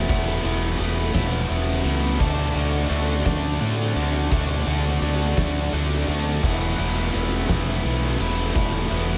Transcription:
0.08 E1 E3 A3 B3 E4, kick, ride
0.43 E1 E3 A3 B3 E4, ride
0.78 E1 E3 A3 B3 E4, ride
1.14 E1 E3 A3 B3 E4, kick, snare, ride
1.48 E1 E3 A3 B3 E4, ride
1.84 C#2 E3 A3 B3 E4, ride
2.19 D2 D3 A3 D4 F#4, kick, crash
2.54 D2 D3 A3 D4 F#4, ride
2.89 D2 D3 A3 D4 F#4, ride
3.24 D2 D3 A3 D4 F#4, kick, snare, ride
3.59 A2 D3 A3 D4 F#4, ride
3.95 D2 D3 A3 D4 F#4, ride
4.31 D2 D3 A3 D4 F#4, kick, ride
4.67 D2 D3 A3 D4 F#4, ride
5.01 D2 D3 A3 D4 F#4, ride
5.37 D2 D3 A3 D4 F#4, kick, snare, ride
5.72 D2 D3 A3 D4 F#4, ride
6.08 D2 D3 A3 D4 F#4, ride
6.43 E1 E3 A3 B3 E4, kick, crash
6.78 E1 E3 A3 B3 E4, ride
7.13 E1 E3 A3 B3 E4, ride
7.48 E1 E3 A3 B3 E4, kick, snare, ride
7.84 B1 E3 A3 B3 E4, ride
8.19 E1 E3 A3 B3 E4, ride
8.55 E1 E3 A3 B3 E4, kick, ride
8.90 E1 E3 A3 B3 E4, ride

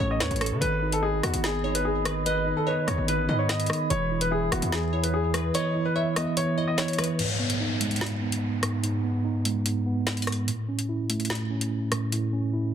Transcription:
Already playing: A2 A3 E4 A4 C#5 C#6
0.00 A1 C#4 C#5
0.11 D#5
0.20 E2 B4 C#5, snare, closed hi-hat
0.31 A1, closed hi-hat
0.36 closed hi-hat
0.41 A2 A4, cross-stick, closed hi-hat
0.46 closed hi-hat
0.51 C#3
0.61 G#1 D#3 G#4 B4 D#5 B5, closed hi-hat
0.82 D#4
0.92 A4, closed hi-hat
1.02 G#4 D#5
1.23 D#2 B3 F#4, cross-stick, closed hi-hat
1.34 G#1, closed hi-hat
1.44 D#3 G#4, snare, closed hi-hat
1.64 D#4 C#5
1.75 B4, closed hi-hat
1.85 G#4
2.05 D#3 B4, cross-stick, closed hi-hat
2.26 D#3 B4 D#5, closed hi-hat
2.47 D#4
2.57 A4
2.67 B4 C#5 D#5
2.87 D#2 B3 C#5, cross-stick, closed hi-hat
2.98 G#1
3.08 D#3 B4, closed hi-hat
3.19 A1
3.29 G#2 D#4 D#5
3.39 C#5
3.49 D#5, snare, closed hi-hat
3.60 closed hi-hat
3.66 D#3, cross-stick, closed hi-hat
3.73 closed hi-hat
3.90 E1 E3 E4 C#5, closed hi-hat
4.11 E4
4.21 B4, closed hi-hat
4.31 G#4 E5
4.52 E1 B3 F#4, cross-stick, closed hi-hat
4.62 E2, closed hi-hat
4.72 E3 G#4, snare, closed hi-hat
4.93 E4 C#5
5.03 B4, closed hi-hat
5.14 G#4
5.34 E3 B4, cross-stick, closed hi-hat
5.54 E3 C#5 D#5, closed hi-hat
5.75 E4
5.85 B4
5.96 C#5 E5
6.16 B3 D#5, cross-stick, closed hi-hat
6.37 E3 C#5, closed hi-hat
6.57 E4 D#5
6.68 D#5
6.78 C#5, snare, closed hi-hat
6.88 closed hi-hat
6.93 closed hi-hat
6.98 E3 B4, cross-stick, closed hi-hat
7.04 closed hi-hat
7.19 G#2, closed hi-hat, crash, downlifter
7.39 B3
7.50 closed hi-hat
7.60 D#4
7.81 G#3, closed hi-hat
7.91 closed hi-hat
7.96 closed hi-hat
8.01 G#2, snare, closed hi-hat
8.06 closed hi-hat
8.22 B3
8.32 closed hi-hat
8.63 G#2, cross-stick, closed hi-hat
8.83 G#2, closed hi-hat
9.04 B3
9.25 D#4
9.45 G#3, closed hi-hat
9.66 G#2, closed hi-hat
9.86 B3
10.07 snare, closed hi-hat
10.17 closed hi-hat
10.22 closed hi-hat
10.27 G#2, cross-stick, closed hi-hat, open hi-hat
10.32 closed hi-hat
10.48 A2, closed hi-hat
10.69 C#4
10.79 closed hi-hat
10.89 E4
11.10 A3, closed hi-hat
11.20 closed hi-hat
11.25 closed hi-hat
11.30 A2, snare, closed hi-hat
11.35 closed hi-hat
11.50 C#4
11.61 closed hi-hat
11.92 A2, cross-stick, closed hi-hat
12.12 A2, closed hi-hat
12.33 C#4
12.53 E4

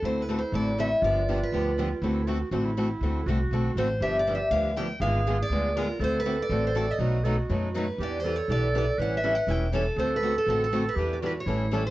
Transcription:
0.02 D2 D3 A3 C4 E4 F#4 A4 C5
0.22 B4
0.29 D3 A3 C4 F#4 A4
0.39 C5
0.52 A1 D3 A3 C4 F#4 A4 D5
0.78 D3 A3 C4 F#4 A4 E5
1.02 G1 D3 F3 B3 D4 F4 G4 D5
1.28 D3 F3 B3 D4 G4
1.43 B4
1.52 D2 D3 F3 B3 D4 G4
1.78 D3 F3 B3 D4 G4
2.02 D2 D3 A3 C4 E4 F#4 A4
2.27 D3 A3 C4 F#4 A4
2.52 A1 D3 A3 C4 F#4 A4
2.65 E4
2.77 D3 A3 C4 F#4 A4
3.01 D2 D3 A3 C4 F#4 A4
3.26 C2 D3 A3 C4 F#4 A4
3.51 B1 D3 A3 C4 F#4 A4
3.75 A1 D3 A3 C4 F#4 A4 C5
4.00 G1 D3 F3 B3 D4 G4 E5
4.04 G4
4.19 D5
4.28 D3 F3 B3 D4 G4
4.35 E5
4.51 D2 D3 F3 B3 D4 G4 F5
4.77 D3 F3 B3 D4 G4 G5
5.00 G#1 D3 G#3 B3 F4 G#4 F5
5.27 D3 G#3 B3 F4 G#4
5.42 D5
5.49 D2 D3 G#3 B3 F4 G#4
5.76 D3 G#3 B3 F4 G#4 A#4
5.99 D2 D3 A3 C4 F#4 A4
6.04 C5
6.19 B4
6.26 D3 A3 C4 F#4 A4
6.42 D5
6.49 A1 D3 A3 C4 F#4 A4
6.67 C5
6.75 D3 A3 C4 F#4 A4 D5
6.91 D#5
6.99 B1 B2 F#3 A3 D#4 F#4 B4
7.24 B2 F#3 A3 D#4 F#4 A4 B4
7.38 F#4
7.50 F#2 B2 F#3 A3 D#4 F#4 B4
7.76 B2 F#3 A3 D#4 F#4 B4
7.98 E2 E3 G3 B3 D4 E4 G4 B4
8.03 D5
8.20 C5
8.24 E3 G3 B3 D4 E4 G4 A4 B4
8.36 C#5
8.48 B1 E3 G3 B3 D4 E4 G4 B4 D5
8.74 E3 G3 B3 D4 E4 G4 B4 D5
8.98 A1 E3 G3 C#4 E4 A4 B4 F#5
9.17 E5
9.23 E3 G3 C#4 E4 A4
9.35 F#5
9.47 E1 E3 G3 C#4 E4 A4 G5
9.72 E3 G3 C#4 E4 A4
9.96 D2 D3 A3 C4 F#4 A4 C5
10.16 B4
10.23 D3 A3 C4 F#4 A4
10.38 A4
10.47 A1 D3 A3 C4 F#4 A4
10.64 A4
10.72 D3 A3 C4 F#4 A4
10.89 B4
10.96 E2 E3 G3 B3 D4 E4 G4 B4
11.13 D5
11.21 E3 G3 B3 D4 E4 F#4 G4 B4
11.26 B4
11.40 C#5
11.46 A1 E3 G3 C#4 E4 A4
11.72 E3 G3 C#4 E4 A4
11.87 C5

